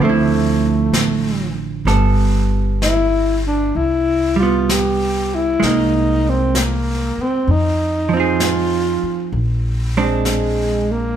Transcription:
0.00 0.88 D2 medium
0.00 1.85 D3 soft
0.00 1.86 F3 soft
0.00 1.54 A3 medium
0.00 brush sweep soft
0.05 1.87 C4 soft
0.09 1.91 E4 medium
0.92 1.82 A1 medium
0.92 brush sweep soft
0.92 snare soft
0.92 hi-hat pedal soft
1.85 3.70 G1 medium
1.85 3.75 G3 soft
1.85 3.75 B3 soft
1.85 3.76 A4 soft
1.85 brush sweep soft
1.85 snare soft
2.82 3.42 E4 medium
2.82 brush sweep soft
2.82 snare soft
2.82 hi-hat pedal soft
3.47 3.78 D4 medium
3.75 5.58 C2 medium
3.75 4.39 E4 medium
3.75 brush sweep soft
4.36 5.59 G3 soft
4.36 4.73 F4 medium
4.43 5.64 B3 soft
4.69 5.36 G4 medium
4.69 brush sweep soft
4.69 snare soft
4.69 hi-hat pedal soft
5.35 5.66 E4 medium
5.60 7.14 C2 medium
5.60 7.47 G#3 soft
5.60 brush sweep soft
5.60 snare soft
5.65 7.50 A#3 soft
5.65 6.31 D#4 medium
6.29 6.60 C4 medium
6.55 7.24 A#3 medium
6.55 brush sweep soft
6.55 snare soft
6.55 hi-hat pedal soft
7.17 muted upright bass stroke soft
7.22 7.53 C4 medium
7.47 8.99 F2 medium
7.47 8.17 D#4 medium
7.47 brush sweep soft
8.09 9.32 F3 soft
8.13 9.34 C4 soft
8.13 9.36 D#4 soft
8.13 9.35 F4 medium
8.20 9.37 G#4 soft
8.40 brush sweep soft
8.40 snare soft
8.40 hi-hat pedal soft
9.03 muted upright bass stroke soft
9.32 11.14 A#1 medium
9.32 brush sweep soft
9.97 11.16 G#3 soft
9.97 10.93 G#3 medium
9.97 11.16 C4 soft
9.97 11.16 D4 soft
10.25 brush sweep soft
10.25 snare soft
10.25 hi-hat pedal soft
10.92 11.16 A#3 medium

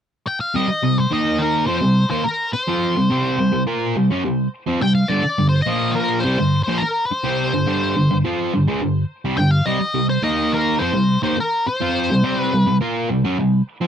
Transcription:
0.27 0.39 G5 medium
0.40 0.56 F5 medium
0.54 0.67 C3 medium
0.54 0.68 G3 medium
0.54 0.98 D#5 medium
0.68 muted distorted electric guitar stroke soft
0.83 1.05 C3 medium
0.83 1.05 G3 medium
0.98 1.12 C5 medium
1.11 1.66 D#3 medium
1.11 1.67 A#3 medium
1.11 1.67 D#4 medium
1.11 1.41 D#5 medium
1.38 1.66 A#4 medium
1.66 1.81 F3 medium
1.66 1.81 C4 loud
1.66 2.09 C5 medium
1.82 2.04 C3 medium
1.82 2.04 G3 medium
2.11 2.24 D#3 medium
2.11 2.24 A#3 medium
2.11 2.24 C5 medium
2.24 2.53 A#4 medium
2.24 muted distorted electric guitar stroke soft
2.53 3.63 C5 medium
2.53 muted distorted electric guitar stroke soft
2.68 2.95 F3 medium
2.68 2.95 C4 medium
2.68 2.96 F4 medium
2.96 3.09 C3 soft
2.96 3.10 G3 medium
3.10 3.37 C3 medium
3.10 3.37 G3 medium
3.10 3.38 C4 medium
3.39 3.51 C3 medium
3.39 3.52 G3 medium
3.52 3.66 C3 medium
3.52 3.66 G3 medium
3.67 3.94 A#3 medium
3.67 3.94 F4 medium
3.67 3.95 A#4 loud
3.96 4.10 C3 medium
3.96 4.10 G3 medium
4.10 4.23 F#3 medium
4.10 4.24 C#4 medium
4.25 4.47 C3 soft
4.25 4.47 G3 medium
4.67 4.80 F3 medium
4.67 4.81 C4 medium
4.82 5.04 C3 medium
4.82 5.04 G3 medium
4.82 4.94 G5 medium
4.95 5.09 F5 medium
5.08 5.22 G2 medium
5.08 5.23 D3 medium
5.08 5.48 D5 medium
5.24 muted distorted electric guitar stroke soft
5.38 5.61 G2 medium
5.38 5.61 D3 medium
5.49 5.62 C5 medium
5.62 5.94 D#5 medium
5.66 6.22 A#2 medium
5.66 6.23 F3 medium
5.66 6.23 A#3 medium
5.91 6.22 A#4 medium
6.20 6.62 C5 medium
6.24 6.37 C3 medium
6.24 6.38 G3 loud
6.39 6.61 G2 medium
6.39 6.61 D3 medium
6.63 6.79 C5 medium
6.68 6.80 A#2 medium
6.68 6.81 F3 loud
6.78 7.05 A#4 medium
6.78 muted distorted electric guitar stroke medium
7.05 8.17 C5 medium
7.11 muted distorted electric guitar stroke soft
7.24 7.51 C3 medium
7.24 7.52 G3 medium
7.24 7.52 C4 medium
7.53 7.66 G2 medium
7.53 7.66 D3 medium
7.67 7.94 G2 medium
7.67 7.94 D3 medium
7.67 7.95 G3 loud
7.96 8.10 G2 medium
7.96 8.10 D3 medium
8.11 8.24 G2 medium
8.11 8.24 D3 medium
8.24 8.51 F3 medium
8.24 8.52 C4 medium
8.24 8.52 F4 medium
8.54 8.67 G2 medium
8.54 8.67 D3 medium
8.68 8.80 C#3 medium
8.68 8.81 G#3 medium
8.82 9.04 G2 medium
8.82 9.04 D3 medium
9.25 9.37 C3 medium
9.25 9.37 G3 medium
9.37 9.61 G2 medium
9.37 9.61 D3 medium
9.37 9.51 G5 medium
9.51 9.66 F5 medium
9.66 9.79 C3 medium
9.66 9.80 G3 medium
9.66 10.06 D#5 medium
9.80 muted distorted electric guitar stroke soft
9.94 10.17 C3 medium
9.94 10.18 G3 medium
10.09 10.23 C5 medium
10.23 10.79 D#3 medium
10.23 10.80 A#3 medium
10.23 10.80 D#4 medium
10.23 10.53 D#5 loud
10.52 10.81 A#4 medium
10.79 10.94 F3 medium
10.79 10.94 C4 loud
10.79 11.22 C5 medium
10.94 11.17 C3 medium
10.94 11.17 G3 medium
11.23 11.36 D#3 medium
11.23 11.37 A#3 medium
11.23 11.36 C5 medium
11.38 11.68 A#4 medium
11.38 muted distorted electric guitar stroke medium
11.66 12.39 C5 medium
11.66 muted distorted electric guitar stroke soft
11.81 12.08 F3 medium
11.81 12.09 C4 medium
11.81 12.09 F4 medium
12.11 12.22 C3 medium
12.11 12.23 G3 medium
12.23 12.51 C3 medium
12.23 12.51 G3 medium
12.23 12.52 C4 medium
12.39 12.76 B4 medium
12.53 12.65 C3 soft
12.53 12.66 G3 medium
12.66 12.80 C3 medium
12.66 12.80 G3 medium
12.81 13.08 A#3 medium
12.81 13.09 F4 medium
12.81 13.09 A#4 medium
13.10 13.24 C3 medium
13.10 13.24 G3 medium
13.25 13.37 F#3 medium
13.25 13.38 C#4 medium
13.39 13.61 C3 medium
13.39 13.61 G3 medium
13.81 13.87 F3 medium
13.81 13.87 C4 medium

